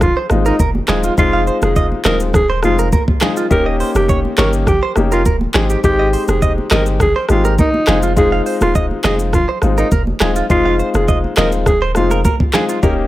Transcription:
Already playing: F1
0.01 F4, kick, cross-stick, low conga, shaker
0.17 C5
0.30 G#1 G#3 C4 D#4 F4, cross-stick, high conga, shaker
0.46 D#4 A#4, shaker
0.59 F1 A#4, kick, high conga, shaker
0.75 high conga
0.88 D#1 G#3 C4 D#4 F4 G#4, cross-stick, clap, low conga, shaker
1.03 F4, shaker
1.18 F1 G#3 C4 D#4 F4, kick, shaker
1.33 F5
1.47 C5, shaker
1.62 F1 G#4, cross-stick, high conga, shaker
1.76 D#5, kick, shaker
1.92 high conga
2.05 D#1 G#3 C4 D#4 F4 A#4 D#5, cross-stick, clap, high conga, low conga, shaker
2.20 shaker
2.33 G#4, kick, cross-stick, low conga, shaker
2.50 C5
2.63 F1 G#3 C4 D#4 F4, cross-stick, high conga, shaker
2.79 A#4, shaker
2.92 A#4, kick, high conga, shaker
3.08 kick, high conga
3.21 G#3 C4 D#4 F4 G#4, cross-stick, clap, low conga, shaker
3.37 F4, shaker
3.50 D#1 A#3 C#4 D#4 G4 A#4, kick, shaker
3.66 D#5
3.80 C5, open hi-hat, shaker
3.95 F1 G4, cross-stick, high conga, shaker
4.09 C#5, kick, shaker
4.25 high conga
4.38 G1 A#3 C#4 D#4 G4 A#4 C#5, cross-stick, clap, high conga, low conga, shaker
4.53 shaker
4.66 G4, kick, cross-stick, low conga, shaker
4.83 C5
4.96 F1 A#3 C#4 D#4 G4, cross-stick, high conga, shaker
5.12 F4 A#4, shaker
5.25 D#1 A#4, kick, high conga, shaker
5.41 high conga
5.54 G#1 G#3 C4 D#4 G4 G#4, cross-stick, clap, low conga, shaker
5.70 G4, shaker
5.84 G#1 G#3 C4 D#4 G4, kick, shaker
5.99 D#5
6.13 C5, open hi-hat, shaker
6.28 F1 G#4, cross-stick, high conga, shaker
6.42 D#5, kick, shaker
6.58 high conga
6.71 G1 G#3 C4 D#4 G4 A#4 D#5, cross-stick, clap, high conga, low conga, shaker
6.86 shaker
6.99 G#4, kick, cross-stick, low conga, shaker
7.16 C5
7.29 G#1 G#3 C4 D#4 F4 G4, cross-stick, high conga, shaker
7.45 A#4, shaker
7.58 D#4 A#4, kick, high conga, shaker
7.74 high conga
7.87 F1 G#3 C4 D#4 F4 G#4, cross-stick, clap, low conga, shaker
8.03 F4, shaker
8.16 G#3 C4 D#4 F4 G#4, kick, shaker
8.32 F5
8.46 C5, open hi-hat, shaker
8.61 D#1 F4, cross-stick, high conga, shaker
8.75 D#5, kick, shaker
8.91 high conga
9.04 F1 G#3 C4 D#4 F4 G#4 D#5, cross-stick, clap, high conga, low conga, shaker
9.19 shaker
9.33 F4, kick, cross-stick, low conga, shaker
9.49 C5
9.62 G#1 G#3 C4 D#4 F4, cross-stick, high conga, shaker
9.78 D#4 A#4, shaker
9.91 F1 A#4, kick, high conga, shaker
10.07 high conga
10.20 D#1 G#3 C4 D#4 F4 G#4, cross-stick, clap, low conga, shaker
10.36 F4, shaker
10.50 F1 G#3 C4 D#4 F4, kick, shaker
10.66 F5
10.79 C5, shaker
10.94 F1 G#4, cross-stick, high conga, shaker
11.08 D#5, kick, shaker
11.24 high conga
11.37 D#1 G#3 C4 D#4 F4 A#4 D#5, cross-stick, clap, high conga, low conga, shaker
11.52 shaker
11.66 G#4, kick, cross-stick, low conga, shaker
11.82 C5
11.95 F1 G#3 C4 D#4 F4, cross-stick, high conga, shaker
12.11 A#4, shaker
12.25 A#4, kick, high conga, shaker
12.40 kick, high conga
12.53 G#3 C4 D#4 F4 G#4, cross-stick, clap, low conga, shaker
12.69 F4, shaker
12.83 D#1 A#3 C#4 D#4 G4 A#4, kick, shaker

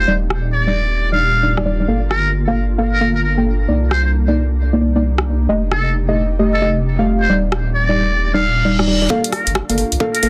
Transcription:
0.00 C5
0.08 D#1 G3 A#3 D4 D#4 F4 G4 D5
0.30 cross-stick
0.53 D5
0.67 G3 D#4 D5
1.12 G3 D#4 D5 F5
1.43 G3 D#4 D5
1.57 G3 D#4 D5, cross-stick
1.66 G3 D#4 D5
1.80 G3 D#4 D5
1.88 G1 A#3 D4 A4 F5
2.11 A#4, cross-stick
2.48 A#3 A4 F5
2.78 A#3 A4 F5
2.93 A#4
3.01 A#3 A4 F5
3.15 A#4
3.23 A#4
3.38 A#3 A4 G5
3.68 C2 A#3 D#4 G4 D5
3.91 C5, cross-stick
4.05 C5
4.28 A#3 D#4 D5
4.73 A#3 D#4 D5
4.81 A#3 D#4 D5
4.96 A#3 D#4 D5
5.18 cross-stick
5.49 F1 A3 C4 G4 D#5
5.72 A4, cross-stick
6.08 A3 G4 D#5
6.39 A3 G4 D#5
6.54 A4
6.62 A3 G4 D#5
6.99 A3 G4 F5
7.21 C5
7.29 D#1 G3 A#3 D4 D#4 F4 D5
7.52 cross-stick
7.74 D5
7.89 G3 D#4 D5
8.20 reverse cymbal
8.34 G3 D#4 D5 F5
8.65 G3 D#4 D5
8.79 G3 D#4 D5, cross-stick
8.87 G3 D#4 D5
9.02 G3 D#4 D5
9.10 A#3 D4 F4 A4 F5, kick
9.24 closed hi-hat
9.32 A#4, cross-stick, open hi-hat
9.47 G1, closed hi-hat
9.55 kick, cross-stick
9.69 G1 A#3 A4 F5, closed hi-hat
9.78 open hi-hat
9.92 C2, closed hi-hat
10.00 A#3 A4 F5, kick
10.14 A#4, closed hi-hat
10.23 G1 A#3 A4 F5, open hi-hat

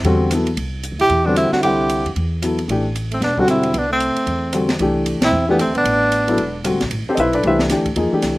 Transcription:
0.03 E2 D3 G3 C4 F#4, ride
0.31 F#3 B3 E4 A4, cross-stick, hi-hat pedal, ride
0.47 ride
0.56 C2, ride
0.83 hi-hat pedal, ride
0.92 D2
0.99 B1 E4 G4, ride
1.10 E2, ride
1.25 D3 G3 B3 C4 D4 F#4
1.36 C4 E4, cross-stick, hi-hat pedal, ride
1.52 D4 F#4, muted upright bass stroke, snare
1.61 C2 D3 G3 E4 G4, ride
1.65 C4 F#5
1.89 hi-hat pedal, ride
2.05 E2, ride
2.16 E2, ride
2.42 F#3 B3 E4 A4, cross-stick, hi-hat pedal, ride
2.59 ride
2.68 A1 E3 A3 D4 G4, ride
2.96 hi-hat pedal, ride
3.11 A3 C4, ride
3.21 E1 B3 D4, snare, ride
3.36 D3 G3 C4 D4 F#4, kick
3.47 C4 E4, cross-stick, hi-hat pedal, ride
3.63 ride
3.73 C2 B3, ride
3.78 D4
3.90 A3 C4
4.00 hi-hat pedal, ride
4.15 muted upright bass stroke, ride
4.27 E2, ride
4.53 D3 G3 C4 F#4, cross-stick, hi-hat pedal, ride
4.69 snare, ride
4.79 C2 E3 A3 D4 G4, ride
5.06 hi-hat pedal, ride
5.21 A#1 C4 E4, snare, ride
5.31 E2
5.49 E3 G3 A3 B3 D4 G4
5.59 A3 C4, cross-stick, hi-hat pedal, ride
5.67 D2
5.75 B1 B3 D4, ride
5.84 A1, ride
6.12 hi-hat pedal, ride
6.27 F#3 B3 E4 A4, ride
6.37 E1, ride
6.64 D3 G3 C4 F#4, cross-stick, hi-hat pedal, ride
6.73 A1
6.81 A#1, snare, ride
6.90 A1, ride
7.07 C4 G4 A4 C5, muted upright bass stroke
7.15 B1 D#5, hi-hat pedal, ride
7.20 E4 B4 C5 E5
7.33 D4 A4 B4 D5, ride
7.43 C2 E3 A3 D4 G4 C5, ride
7.47 E4 B4 E5
7.59 snare
7.69 D2 E3 A3 D4 G4, snare, hi-hat pedal, ride
7.86 kick, ride
7.96 E2 F3 A#3 D#4 G#4, ride
8.12 E3 A3 D4 G4, muted upright bass stroke
8.22 C2, snare, hi-hat pedal, ride

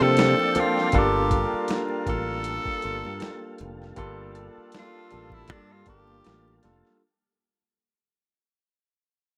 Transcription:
Already playing: F3 A#3 C4 D4 F4 G4 A4 C5 D5 F5 G5 A5
0.01 C3 A4
0.17 snare, closed hi-hat, high conga
0.40 muted conga
0.55 F3 A#3 C4 D4 A4, closed hi-hat, high conga, low conga
0.60 F4
0.78 snare
0.92 G1 G3 A#3 D4 F4 G4 A4 F5 A5, kick, closed hi-hat, muted conga
0.99 G4
1.31 kick, closed hi-hat
1.54 muted fingered electric bass stroke
1.68 snare, closed hi-hat, muted conga, high conga
1.88 muted conga
2.07 A1 G3 A#3 D4 F4 A4, kick, closed hi-hat, low conga
2.44 closed hi-hat
2.66 kick, muted conga
2.82 G1 G3 A#3 D4 F4 A4, closed hi-hat, high conga
3.05 G2, high conga
3.20 snare, closed hi-hat, muted conga, high conga
3.58 F1, closed hi-hat, high conga, low conga
3.82 snare
3.96 G1 G3 A#3 D4 F4 A4, kick, closed hi-hat, muted conga
4.35 closed hi-hat
4.58 muted fingered electric bass stroke
4.72 snare, closed hi-hat, muted conga, high conga
4.79 F4
5.11 A1 G3 A#3 D4 F4 A4, closed hi-hat, high conga, low conga
5.30 kick, low conga
5.35 E4
5.48 G2, kick, closed hi-hat
5.52 D4
5.73 F4
5.86 G1 G3 A#3 D4 F4 G4 A#4, kick, closed hi-hat, high conga
6.08 high conga
6.24 A1, snare, closed hi-hat, muted conga, high conga
6.48 muted conga
6.63 F1 G3 A#3 D4 F4 A4, snare, closed hi-hat, high conga, low conga
6.85 snare

